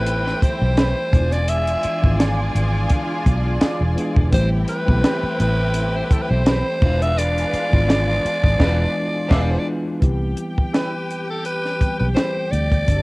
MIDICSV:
0, 0, Header, 1, 9, 480
1, 0, Start_track
1, 0, Tempo, 711744
1, 1003, Time_signature, 4, 2, 24, 8
1, 8781, End_track
2, 0, Start_track
2, 0, Title_t, "Alto saxophone"
2, 0, Program_c, 0, 65
2, 0, Note_on_c, 0, 71, 91
2, 286, Note_on_c, 0, 72, 89
2, 296, Note_off_c, 0, 71, 0
2, 894, Note_on_c, 0, 74, 101
2, 904, Note_off_c, 0, 72, 0
2, 1007, Note_on_c, 0, 76, 103
2, 1017, Note_off_c, 0, 74, 0
2, 1484, Note_off_c, 0, 76, 0
2, 2928, Note_on_c, 0, 72, 89
2, 3034, Note_off_c, 0, 72, 0
2, 3167, Note_on_c, 0, 71, 90
2, 3616, Note_off_c, 0, 71, 0
2, 3649, Note_on_c, 0, 71, 90
2, 4026, Note_on_c, 0, 72, 72
2, 4036, Note_off_c, 0, 71, 0
2, 4080, Note_on_c, 0, 71, 68
2, 4090, Note_off_c, 0, 72, 0
2, 4133, Note_on_c, 0, 69, 71
2, 4143, Note_off_c, 0, 71, 0
2, 4197, Note_on_c, 0, 71, 76
2, 4207, Note_off_c, 0, 69, 0
2, 4252, Note_on_c, 0, 72, 101
2, 4262, Note_off_c, 0, 71, 0
2, 4736, Note_on_c, 0, 76, 112
2, 4746, Note_off_c, 0, 72, 0
2, 4843, Note_on_c, 0, 74, 110
2, 4853, Note_off_c, 0, 76, 0
2, 6284, Note_on_c, 0, 76, 74
2, 6294, Note_off_c, 0, 74, 0
2, 6351, Note_on_c, 0, 74, 76
2, 6361, Note_off_c, 0, 76, 0
2, 6415, Note_on_c, 0, 72, 77
2, 6425, Note_off_c, 0, 74, 0
2, 6469, Note_on_c, 0, 74, 79
2, 6479, Note_off_c, 0, 72, 0
2, 6523, Note_off_c, 0, 74, 0
2, 7251, Note_on_c, 0, 71, 70
2, 7592, Note_off_c, 0, 71, 0
2, 7623, Note_on_c, 0, 69, 78
2, 7721, Note_off_c, 0, 69, 0
2, 7726, Note_on_c, 0, 71, 89
2, 8070, Note_off_c, 0, 71, 0
2, 8092, Note_on_c, 0, 71, 64
2, 8142, Note_off_c, 0, 71, 0
2, 8194, Note_on_c, 0, 72, 92
2, 8440, Note_on_c, 0, 74, 104
2, 8450, Note_off_c, 0, 72, 0
2, 8781, Note_off_c, 0, 74, 0
2, 8781, End_track
3, 0, Start_track
3, 0, Title_t, "Violin section"
3, 0, Program_c, 1, 48
3, 0, Note_on_c, 1, 60, 84
3, 0, Note_on_c, 1, 64, 78
3, 0, Note_on_c, 1, 79, 85
3, 738, Note_off_c, 1, 79, 0
3, 739, Note_off_c, 1, 60, 0
3, 739, Note_off_c, 1, 64, 0
3, 761, Note_on_c, 1, 65, 80
3, 764, Note_on_c, 1, 74, 76
3, 764, Note_on_c, 1, 80, 87
3, 2892, Note_off_c, 1, 65, 0
3, 2893, Note_off_c, 1, 80, 0
3, 2894, Note_off_c, 1, 74, 0
3, 2921, Note_on_c, 1, 64, 84
3, 2922, Note_on_c, 1, 60, 88
3, 2923, Note_on_c, 1, 79, 89
3, 4572, Note_off_c, 1, 64, 0
3, 4573, Note_off_c, 1, 60, 0
3, 4573, Note_off_c, 1, 79, 0
3, 4599, Note_on_c, 1, 77, 89
3, 4600, Note_on_c, 1, 71, 80
3, 4602, Note_on_c, 1, 62, 75
3, 5775, Note_off_c, 1, 77, 0
3, 5776, Note_off_c, 1, 71, 0
3, 5777, Note_off_c, 1, 62, 0
3, 5796, Note_on_c, 1, 62, 108
3, 5797, Note_on_c, 1, 71, 101
3, 5797, Note_on_c, 1, 77, 89
3, 5964, Note_off_c, 1, 62, 0
3, 5965, Note_off_c, 1, 71, 0
3, 5965, Note_off_c, 1, 77, 0
3, 6279, Note_on_c, 1, 71, 98
3, 6280, Note_on_c, 1, 62, 103
3, 6281, Note_on_c, 1, 77, 96
3, 6446, Note_off_c, 1, 71, 0
3, 6447, Note_off_c, 1, 62, 0
3, 6447, Note_off_c, 1, 77, 0
3, 6758, Note_on_c, 1, 79, 83
3, 6760, Note_on_c, 1, 67, 73
3, 8658, Note_off_c, 1, 79, 0
3, 8659, Note_off_c, 1, 67, 0
3, 8690, Note_on_c, 1, 69, 77
3, 8690, Note_on_c, 1, 81, 85
3, 8781, Note_off_c, 1, 69, 0
3, 8781, Note_off_c, 1, 81, 0
3, 8781, End_track
4, 0, Start_track
4, 0, Title_t, "Clean electric guitar"
4, 0, Program_c, 2, 27
4, 521, Note_on_c, 2, 60, 72
4, 525, Note_on_c, 2, 67, 67
4, 527, Note_on_c, 2, 71, 81
4, 656, Note_off_c, 2, 60, 0
4, 658, Note_off_c, 2, 67, 0
4, 659, Note_off_c, 2, 71, 0
4, 1483, Note_on_c, 2, 65, 72
4, 1485, Note_on_c, 2, 68, 79
4, 1489, Note_on_c, 2, 74, 78
4, 1616, Note_off_c, 2, 65, 0
4, 1618, Note_off_c, 2, 68, 0
4, 1619, Note_off_c, 2, 74, 0
4, 2433, Note_on_c, 2, 65, 82
4, 2437, Note_on_c, 2, 68, 84
4, 2441, Note_on_c, 2, 74, 83
4, 2571, Note_off_c, 2, 65, 0
4, 2573, Note_off_c, 2, 68, 0
4, 2575, Note_off_c, 2, 74, 0
4, 3396, Note_on_c, 2, 60, 76
4, 3402, Note_on_c, 2, 67, 78
4, 3403, Note_on_c, 2, 71, 95
4, 3532, Note_off_c, 2, 60, 0
4, 3535, Note_off_c, 2, 67, 0
4, 3535, Note_off_c, 2, 71, 0
4, 4357, Note_on_c, 2, 60, 71
4, 4363, Note_on_c, 2, 67, 72
4, 4367, Note_on_c, 2, 71, 89
4, 4492, Note_off_c, 2, 60, 0
4, 4495, Note_off_c, 2, 67, 0
4, 4497, Note_off_c, 2, 71, 0
4, 5316, Note_on_c, 2, 65, 82
4, 5319, Note_on_c, 2, 68, 85
4, 5323, Note_on_c, 2, 74, 96
4, 5452, Note_off_c, 2, 65, 0
4, 5453, Note_off_c, 2, 68, 0
4, 5455, Note_off_c, 2, 74, 0
4, 5793, Note_on_c, 2, 65, 84
4, 5797, Note_on_c, 2, 68, 90
4, 5800, Note_on_c, 2, 74, 91
4, 5963, Note_off_c, 2, 65, 0
4, 5965, Note_off_c, 2, 68, 0
4, 5966, Note_off_c, 2, 74, 0
4, 6273, Note_on_c, 2, 65, 87
4, 6278, Note_on_c, 2, 68, 83
4, 6282, Note_on_c, 2, 74, 81
4, 6442, Note_off_c, 2, 65, 0
4, 6445, Note_off_c, 2, 68, 0
4, 6448, Note_off_c, 2, 74, 0
4, 7238, Note_on_c, 2, 64, 65
4, 7241, Note_on_c, 2, 67, 65
4, 7244, Note_on_c, 2, 71, 73
4, 7374, Note_off_c, 2, 64, 0
4, 7376, Note_off_c, 2, 67, 0
4, 7377, Note_off_c, 2, 71, 0
4, 8199, Note_on_c, 2, 64, 68
4, 8202, Note_on_c, 2, 67, 68
4, 8207, Note_on_c, 2, 71, 65
4, 8336, Note_off_c, 2, 64, 0
4, 8338, Note_off_c, 2, 67, 0
4, 8340, Note_off_c, 2, 71, 0
4, 8781, End_track
5, 0, Start_track
5, 0, Title_t, "String section"
5, 0, Program_c, 3, 48
5, 0, Note_on_c, 3, 57, 74
5, 0, Note_on_c, 3, 64, 64
5, 0, Note_on_c, 3, 67, 77
5, 748, Note_off_c, 3, 67, 0
5, 749, Note_off_c, 3, 57, 0
5, 749, Note_off_c, 3, 64, 0
5, 758, Note_on_c, 3, 62, 70
5, 759, Note_on_c, 3, 68, 89
5, 761, Note_on_c, 3, 65, 73
5, 764, Note_on_c, 3, 52, 72
5, 2896, Note_off_c, 3, 62, 0
5, 2896, Note_off_c, 3, 68, 0
5, 2897, Note_off_c, 3, 65, 0
5, 2899, Note_off_c, 3, 52, 0
5, 2921, Note_on_c, 3, 64, 69
5, 2922, Note_on_c, 3, 67, 81
5, 2927, Note_on_c, 3, 57, 77
5, 4583, Note_off_c, 3, 64, 0
5, 4583, Note_off_c, 3, 67, 0
5, 4586, Note_off_c, 3, 57, 0
5, 4594, Note_on_c, 3, 68, 91
5, 4596, Note_on_c, 3, 65, 75
5, 4598, Note_on_c, 3, 62, 81
5, 4599, Note_on_c, 3, 52, 77
5, 6737, Note_off_c, 3, 68, 0
5, 6738, Note_off_c, 3, 65, 0
5, 6739, Note_off_c, 3, 52, 0
5, 6739, Note_off_c, 3, 62, 0
5, 8781, End_track
6, 0, Start_track
6, 0, Title_t, "Tine electric piano"
6, 0, Program_c, 4, 4
6, 0, Control_c, 4, 64, 127
6, 0, Note_on_c, 4, 52, 80
6, 0, Note_on_c, 4, 55, 68
6, 0, Note_on_c, 4, 57, 62
6, 0, Note_on_c, 4, 59, 67
6, 0, Note_on_c, 4, 60, 70
6, 0, Note_on_c, 4, 63, 66
6, 0, Note_on_c, 4, 64, 81
6, 0, Note_on_c, 4, 67, 79
6, 104, Note_off_c, 4, 52, 0
6, 107, Note_off_c, 4, 57, 0
6, 111, Note_off_c, 4, 59, 0
6, 115, Note_off_c, 4, 60, 0
6, 140, Note_off_c, 4, 64, 0
6, 748, Note_on_c, 4, 52, 65
6, 757, Note_on_c, 4, 56, 62
6, 763, Note_on_c, 4, 59, 64
6, 771, Control_c, 4, 64, 0
6, 771, Note_on_c, 4, 62, 62
6, 772, Note_off_c, 4, 55, 0
6, 776, Note_off_c, 4, 63, 0
6, 777, Note_on_c, 4, 64, 59
6, 778, Note_off_c, 4, 67, 0
6, 818, Note_off_c, 4, 64, 0
6, 820, Note_on_c, 4, 65, 81
6, 901, Control_c, 4, 64, 127
6, 1235, Note_off_c, 4, 52, 0
6, 1239, Note_off_c, 4, 56, 0
6, 1242, Note_off_c, 4, 59, 0
6, 1246, Note_off_c, 4, 62, 0
6, 1271, Note_off_c, 4, 65, 0
6, 1361, Note_on_c, 4, 52, 72
6, 1365, Note_on_c, 4, 56, 66
6, 1375, Note_on_c, 4, 59, 75
6, 1383, Note_on_c, 4, 62, 66
6, 1388, Note_on_c, 4, 65, 86
6, 2023, Note_off_c, 4, 52, 0
6, 2024, Note_off_c, 4, 56, 0
6, 2030, Note_off_c, 4, 59, 0
6, 2033, Note_off_c, 4, 62, 0
6, 2036, Note_off_c, 4, 65, 0
6, 2667, Note_on_c, 4, 52, 89
6, 2673, Note_on_c, 4, 56, 75
6, 2677, Note_on_c, 4, 59, 76
6, 2684, Note_on_c, 4, 62, 69
6, 2691, Note_on_c, 4, 68, 94
6, 2845, Note_off_c, 4, 52, 0
6, 2848, Note_off_c, 4, 56, 0
6, 2850, Note_off_c, 4, 59, 0
6, 2854, Note_off_c, 4, 62, 0
6, 2857, Note_off_c, 4, 68, 0
6, 2906, Note_on_c, 4, 52, 81
6, 2914, Note_on_c, 4, 57, 69
6, 2919, Note_on_c, 4, 55, 70
6, 2925, Note_on_c, 4, 60, 70
6, 2930, Control_c, 4, 64, 0
6, 2932, Note_on_c, 4, 67, 89
6, 3054, Control_c, 4, 64, 127
6, 3162, Note_off_c, 4, 52, 0
6, 3166, Note_off_c, 4, 57, 0
6, 3168, Note_off_c, 4, 55, 0
6, 3171, Note_off_c, 4, 60, 0
6, 3175, Note_off_c, 4, 67, 0
6, 3275, Note_on_c, 4, 52, 76
6, 3284, Note_on_c, 4, 57, 72
6, 3288, Note_on_c, 4, 59, 70
6, 3297, Note_on_c, 4, 60, 68
6, 3302, Note_on_c, 4, 67, 82
6, 3939, Note_off_c, 4, 52, 0
6, 3943, Note_off_c, 4, 57, 0
6, 3946, Note_off_c, 4, 59, 0
6, 3950, Note_off_c, 4, 60, 0
6, 3952, Note_off_c, 4, 67, 0
6, 4584, Note_on_c, 4, 52, 73
6, 4590, Note_on_c, 4, 53, 53
6, 4599, Note_on_c, 4, 59, 70
6, 4604, Note_on_c, 4, 62, 72
6, 4609, Control_c, 4, 64, 0
6, 4610, Note_on_c, 4, 65, 88
6, 4633, Note_on_c, 4, 56, 68
6, 4642, Note_off_c, 4, 53, 0
6, 4706, Control_c, 4, 64, 127
6, 5072, Note_off_c, 4, 52, 0
6, 5079, Note_off_c, 4, 59, 0
6, 5082, Note_off_c, 4, 62, 0
6, 5085, Note_off_c, 4, 65, 0
6, 5096, Note_off_c, 4, 56, 0
6, 5193, Note_on_c, 4, 52, 72
6, 5199, Note_on_c, 4, 56, 68
6, 5207, Note_on_c, 4, 59, 69
6, 5210, Note_on_c, 4, 62, 68
6, 5218, Note_on_c, 4, 65, 82
6, 5779, Note_off_c, 4, 52, 0
6, 5787, Note_on_c, 4, 52, 89
6, 5788, Note_off_c, 4, 56, 0
6, 5790, Note_off_c, 4, 59, 0
6, 5796, Note_on_c, 4, 56, 97
6, 5798, Note_on_c, 4, 59, 95
6, 5800, Note_off_c, 4, 62, 0
6, 5804, Note_off_c, 4, 65, 0
6, 5807, Note_on_c, 4, 62, 91
6, 5813, Note_on_c, 4, 65, 96
6, 5959, Note_off_c, 4, 52, 0
6, 5964, Note_off_c, 4, 56, 0
6, 5965, Note_off_c, 4, 59, 0
6, 5970, Note_off_c, 4, 62, 0
6, 5974, Note_off_c, 4, 65, 0
6, 6260, Note_on_c, 4, 52, 91
6, 6269, Note_on_c, 4, 56, 88
6, 6275, Note_on_c, 4, 59, 90
6, 6283, Note_on_c, 4, 62, 85
6, 6288, Note_on_c, 4, 65, 89
6, 6435, Note_off_c, 4, 52, 0
6, 6440, Note_off_c, 4, 56, 0
6, 6444, Note_off_c, 4, 59, 0
6, 6448, Note_off_c, 4, 62, 0
6, 6451, Note_off_c, 4, 65, 0
6, 6742, Note_on_c, 4, 52, 81
6, 6749, Note_on_c, 4, 55, 74
6, 6756, Note_on_c, 4, 59, 72
6, 6764, Note_on_c, 4, 60, 66
6, 6770, Note_on_c, 4, 67, 84
6, 6771, Control_c, 4, 64, 0
6, 6879, Control_c, 4, 64, 127
6, 7419, Note_off_c, 4, 52, 0
6, 7423, Note_off_c, 4, 55, 0
6, 7426, Note_off_c, 4, 59, 0
6, 7431, Note_off_c, 4, 60, 0
6, 7434, Note_off_c, 4, 67, 0
6, 7951, Note_on_c, 4, 52, 62
6, 7960, Note_on_c, 4, 55, 53
6, 7965, Note_on_c, 4, 59, 53
6, 7972, Note_on_c, 4, 60, 54
6, 7980, Note_on_c, 4, 67, 68
6, 8129, Note_off_c, 4, 52, 0
6, 8134, Note_off_c, 4, 55, 0
6, 8136, Note_off_c, 4, 59, 0
6, 8140, Note_off_c, 4, 60, 0
6, 8144, Note_off_c, 4, 67, 0
6, 8190, Note_on_c, 4, 52, 61
6, 8198, Note_on_c, 4, 55, 55
6, 8209, Note_on_c, 4, 60, 62
6, 8217, Note_on_c, 4, 69, 69
6, 8537, Note_off_c, 4, 52, 0
6, 8540, Note_off_c, 4, 55, 0
6, 8546, Note_off_c, 4, 60, 0
6, 8550, Note_off_c, 4, 69, 0
6, 8672, Note_on_c, 4, 53, 65
6, 8680, Note_on_c, 4, 55, 61
6, 8686, Note_on_c, 4, 60, 61
6, 8694, Control_c, 4, 64, 0
6, 8694, Note_on_c, 4, 62, 58
6, 8699, Note_on_c, 4, 66, 59
6, 8740, Note_off_c, 4, 66, 0
6, 8743, Note_on_c, 4, 67, 72
6, 8781, Note_off_c, 4, 53, 0
6, 8781, Note_off_c, 4, 55, 0
6, 8781, Note_off_c, 4, 60, 0
6, 8781, Note_off_c, 4, 62, 0
6, 8781, Note_off_c, 4, 67, 0
6, 8781, End_track
7, 0, Start_track
7, 0, Title_t, "Fingered electric bass"
7, 0, Program_c, 5, 33
7, 0, Note_on_c, 5, 33, 74
7, 220, Note_off_c, 5, 33, 0
7, 415, Note_on_c, 5, 35, 94
7, 622, Note_off_c, 5, 35, 0
7, 763, Note_on_c, 5, 28, 92
7, 1178, Note_off_c, 5, 28, 0
7, 1375, Note_on_c, 5, 32, 90
7, 1677, Note_off_c, 5, 32, 0
7, 1720, Note_on_c, 5, 32, 85
7, 1928, Note_off_c, 5, 32, 0
7, 2200, Note_on_c, 5, 35, 93
7, 2408, Note_off_c, 5, 35, 0
7, 2568, Note_on_c, 5, 28, 81
7, 2665, Note_off_c, 5, 28, 0
7, 2810, Note_on_c, 5, 28, 88
7, 2905, Note_off_c, 5, 28, 0
7, 2921, Note_on_c, 5, 33, 100
7, 3128, Note_off_c, 5, 33, 0
7, 3296, Note_on_c, 5, 35, 88
7, 3388, Note_off_c, 5, 35, 0
7, 3642, Note_on_c, 5, 33, 85
7, 4056, Note_off_c, 5, 33, 0
7, 4253, Note_on_c, 5, 35, 90
7, 4459, Note_off_c, 5, 35, 0
7, 4599, Note_on_c, 5, 28, 108
7, 5015, Note_off_c, 5, 28, 0
7, 5215, Note_on_c, 5, 32, 99
7, 5516, Note_off_c, 5, 32, 0
7, 5690, Note_on_c, 5, 32, 92
7, 5785, Note_off_c, 5, 32, 0
7, 5799, Note_on_c, 5, 28, 104
7, 5966, Note_off_c, 5, 28, 0
7, 6278, Note_on_c, 5, 28, 101
7, 6445, Note_off_c, 5, 28, 0
7, 6758, Note_on_c, 5, 36, 82
7, 6967, Note_off_c, 5, 36, 0
7, 8097, Note_on_c, 5, 35, 82
7, 8192, Note_off_c, 5, 35, 0
7, 8448, Note_on_c, 5, 38, 78
7, 8655, Note_off_c, 5, 38, 0
7, 8687, Note_on_c, 5, 31, 83
7, 8781, Note_off_c, 5, 31, 0
7, 8781, End_track
8, 0, Start_track
8, 0, Title_t, "Muted fingered electric bass strokes"
8, 287, Note_on_c, 9, 29, 49
8, 355, Note_off_c, 9, 29, 0
8, 1246, Note_on_c, 9, 29, 42
8, 1313, Note_off_c, 9, 29, 0
8, 3530, Note_on_c, 9, 29, 45
8, 3597, Note_off_c, 9, 29, 0
8, 4120, Note_on_c, 9, 29, 48
8, 4188, Note_off_c, 9, 29, 0
8, 5081, Note_on_c, 9, 29, 52
8, 5148, Note_off_c, 9, 29, 0
8, 5564, Note_on_c, 9, 29, 42
8, 5631, Note_off_c, 9, 29, 0
8, 7966, Note_on_c, 9, 29, 45
8, 8033, Note_off_c, 9, 29, 0
8, 8781, End_track
9, 0, Start_track
9, 0, Title_t, "Drums"
9, 44, Note_on_c, 9, 42, 85
9, 111, Note_off_c, 9, 42, 0
9, 179, Note_on_c, 9, 38, 35
9, 246, Note_off_c, 9, 38, 0
9, 285, Note_on_c, 9, 36, 88
9, 286, Note_on_c, 9, 42, 68
9, 353, Note_off_c, 9, 36, 0
9, 354, Note_off_c, 9, 42, 0
9, 521, Note_on_c, 9, 42, 88
9, 524, Note_on_c, 9, 38, 126
9, 588, Note_off_c, 9, 42, 0
9, 591, Note_off_c, 9, 38, 0
9, 762, Note_on_c, 9, 36, 109
9, 765, Note_on_c, 9, 42, 78
9, 830, Note_off_c, 9, 36, 0
9, 832, Note_off_c, 9, 42, 0
9, 888, Note_on_c, 9, 38, 33
9, 892, Note_on_c, 9, 42, 52
9, 956, Note_off_c, 9, 38, 0
9, 960, Note_off_c, 9, 42, 0
9, 998, Note_on_c, 9, 42, 105
9, 1065, Note_off_c, 9, 42, 0
9, 1129, Note_on_c, 9, 42, 54
9, 1197, Note_off_c, 9, 42, 0
9, 1235, Note_on_c, 9, 42, 71
9, 1302, Note_off_c, 9, 42, 0
9, 1374, Note_on_c, 9, 36, 92
9, 1441, Note_off_c, 9, 36, 0
9, 1484, Note_on_c, 9, 38, 102
9, 1484, Note_on_c, 9, 42, 94
9, 1551, Note_off_c, 9, 42, 0
9, 1552, Note_off_c, 9, 38, 0
9, 1724, Note_on_c, 9, 42, 69
9, 1792, Note_off_c, 9, 42, 0
9, 1952, Note_on_c, 9, 42, 90
9, 1958, Note_on_c, 9, 36, 88
9, 2019, Note_off_c, 9, 42, 0
9, 2026, Note_off_c, 9, 36, 0
9, 2199, Note_on_c, 9, 36, 93
9, 2201, Note_on_c, 9, 42, 69
9, 2267, Note_off_c, 9, 36, 0
9, 2269, Note_off_c, 9, 42, 0
9, 2435, Note_on_c, 9, 42, 91
9, 2438, Note_on_c, 9, 38, 120
9, 2502, Note_off_c, 9, 42, 0
9, 2505, Note_off_c, 9, 38, 0
9, 2683, Note_on_c, 9, 42, 73
9, 2751, Note_off_c, 9, 42, 0
9, 2809, Note_on_c, 9, 36, 89
9, 2876, Note_off_c, 9, 36, 0
9, 2918, Note_on_c, 9, 36, 104
9, 2918, Note_on_c, 9, 42, 109
9, 2985, Note_off_c, 9, 42, 0
9, 2986, Note_off_c, 9, 36, 0
9, 3154, Note_on_c, 9, 42, 71
9, 3222, Note_off_c, 9, 42, 0
9, 3292, Note_on_c, 9, 36, 92
9, 3360, Note_off_c, 9, 36, 0
9, 3399, Note_on_c, 9, 42, 94
9, 3400, Note_on_c, 9, 38, 112
9, 3467, Note_off_c, 9, 38, 0
9, 3467, Note_off_c, 9, 42, 0
9, 3641, Note_on_c, 9, 42, 73
9, 3709, Note_off_c, 9, 42, 0
9, 3871, Note_on_c, 9, 42, 87
9, 3938, Note_off_c, 9, 42, 0
9, 4119, Note_on_c, 9, 36, 99
9, 4121, Note_on_c, 9, 42, 69
9, 4187, Note_off_c, 9, 36, 0
9, 4189, Note_off_c, 9, 42, 0
9, 4358, Note_on_c, 9, 42, 91
9, 4361, Note_on_c, 9, 38, 121
9, 4426, Note_off_c, 9, 42, 0
9, 4429, Note_off_c, 9, 38, 0
9, 4598, Note_on_c, 9, 49, 65
9, 4600, Note_on_c, 9, 36, 103
9, 4665, Note_off_c, 9, 49, 0
9, 4667, Note_off_c, 9, 36, 0
9, 4734, Note_on_c, 9, 42, 51
9, 4802, Note_off_c, 9, 42, 0
9, 4846, Note_on_c, 9, 42, 104
9, 4913, Note_off_c, 9, 42, 0
9, 4977, Note_on_c, 9, 42, 60
9, 5045, Note_off_c, 9, 42, 0
9, 5082, Note_on_c, 9, 42, 62
9, 5149, Note_off_c, 9, 42, 0
9, 5215, Note_on_c, 9, 36, 92
9, 5282, Note_off_c, 9, 36, 0
9, 5327, Note_on_c, 9, 38, 112
9, 5327, Note_on_c, 9, 42, 90
9, 5394, Note_off_c, 9, 42, 0
9, 5395, Note_off_c, 9, 38, 0
9, 5569, Note_on_c, 9, 42, 76
9, 5636, Note_off_c, 9, 42, 0
9, 5689, Note_on_c, 9, 36, 93
9, 5756, Note_off_c, 9, 36, 0
9, 5798, Note_on_c, 9, 36, 92
9, 5798, Note_on_c, 9, 57, 82
9, 5800, Note_on_c, 9, 38, 101
9, 5865, Note_off_c, 9, 36, 0
9, 5865, Note_off_c, 9, 57, 0
9, 5868, Note_off_c, 9, 38, 0
9, 6275, Note_on_c, 9, 57, 85
9, 6278, Note_on_c, 9, 36, 110
9, 6278, Note_on_c, 9, 38, 105
9, 6342, Note_off_c, 9, 57, 0
9, 6345, Note_off_c, 9, 36, 0
9, 6345, Note_off_c, 9, 38, 0
9, 6757, Note_on_c, 9, 36, 104
9, 6757, Note_on_c, 9, 42, 86
9, 6824, Note_off_c, 9, 42, 0
9, 6825, Note_off_c, 9, 36, 0
9, 6993, Note_on_c, 9, 42, 59
9, 7060, Note_off_c, 9, 42, 0
9, 7134, Note_on_c, 9, 36, 85
9, 7202, Note_off_c, 9, 36, 0
9, 7245, Note_on_c, 9, 38, 93
9, 7245, Note_on_c, 9, 42, 84
9, 7312, Note_off_c, 9, 42, 0
9, 7313, Note_off_c, 9, 38, 0
9, 7490, Note_on_c, 9, 42, 60
9, 7557, Note_off_c, 9, 42, 0
9, 7722, Note_on_c, 9, 42, 77
9, 7789, Note_off_c, 9, 42, 0
9, 7859, Note_on_c, 9, 38, 30
9, 7927, Note_off_c, 9, 38, 0
9, 7964, Note_on_c, 9, 36, 77
9, 7966, Note_on_c, 9, 42, 57
9, 8032, Note_off_c, 9, 36, 0
9, 8034, Note_off_c, 9, 42, 0
9, 8205, Note_on_c, 9, 42, 80
9, 8208, Note_on_c, 9, 38, 106
9, 8272, Note_off_c, 9, 42, 0
9, 8275, Note_off_c, 9, 38, 0
9, 8451, Note_on_c, 9, 42, 65
9, 8518, Note_off_c, 9, 42, 0
9, 8576, Note_on_c, 9, 36, 82
9, 8576, Note_on_c, 9, 42, 45
9, 8644, Note_off_c, 9, 36, 0
9, 8644, Note_off_c, 9, 42, 0
9, 8686, Note_on_c, 9, 42, 98
9, 8687, Note_on_c, 9, 36, 91
9, 8753, Note_off_c, 9, 42, 0
9, 8754, Note_off_c, 9, 36, 0
9, 8781, End_track
0, 0, End_of_file